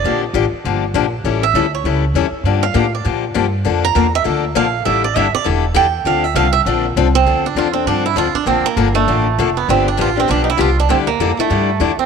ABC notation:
X:1
M:4/4
L:1/16
Q:"Swing" 1/4=199
K:Dm
V:1 name="Steel-string acoustic guitar"
d2 z12 z2 | z2 e4 ^c2 z8 | z2 f4 d2 z8 | z2 b4 e2 z4 f4 |
e2 d2 e2 d2 z4 g4 | f2 e2 f2 e2 z6 C2- | C2 D2 F2 C2 D2 E2 F2 D2 | C2 B,4 A,8 =B,2 |
C2 D2 F2 C2 D3/2 _E/2 =E2 F2 D2 | C2 B,4 A,8 C2 |]
V:2 name="Steel-string acoustic guitar"
[D,F,B,DG]2 z2 [D,F,B,DG]2 z2 [D,F,B,DG]2 z2 [D,F,B,DG]2 z2 | [E,G,^CEA]2 z2 [E,G,CEA]2 z2 [E,G,CEA]2 z2 [E,G,CEA]2 z2 | [D,F,B,DG]2 z2 [D,F,B,DG]2 z2 [D,F,B,DG]2 z2 [D,F,B,DG]2 z2 | [D,F,B,DA]2 z2 [D,F,B,DA]2 z2 [D,F,B,DA]2 z2 [D,F,B,DA]2 z2 |
[D,G,DEA]2 z2 [D,G,DEA]2 z2 [D,G,DEA]2 z2 [D,G,DEA]2 z2 | [D,F,CDA]2 z2 [D,F,CDA]2 z2 [D,F,CDA]2 z2 [D,F,CDA]2 z2 | [D,F,CDA]2 z2 [D,F,CDA]2 [CDA]2 [D,F,CDA]2 z2 [D,F,CDA]2 z2 | [D,F,B,DA]2 z2 [D,F,B,DA]2 [B,DA]2 [D,F,B,DA]2 z2 [D,F,B,DA]2 z2 |
[D,F,=B,DG]2 z2 [D,F,B,DG]2 [B,DG]2 [D,F,B,DG]2 z2 [D,F,B,DG]2 z2 | [D,G,DEA]2 z2 [D,G,DEA]2 [DEA]2 [D,G,DEA]2 z2 [D,G,DEA]2 z2 |]
V:3 name="Upright bass" clef=bass
B,,,4 A,,,2 z2 G,,,4 B,,,4 | A,,,4 D,,4 ^C,,4 E,,2 z2 | G,,4 A,,4 B,,4 G,,4 | F,,4 E,,4 D,,4 B,,,4 |
A,,,4 G,,,2 z2 E,,,4 E,,4 | D,,4 C,,4 B,,,4 C,,4 | D,,4 E,,4 G,,4 D,,2 z2 | B,,,2 z2 G,,,4 A,,,4 F,,,4 |
G,,,4 A,,,4 =B,,,4 C,,4 | D,,4 F,,2 z2 G,,4 E,,2 z2 |]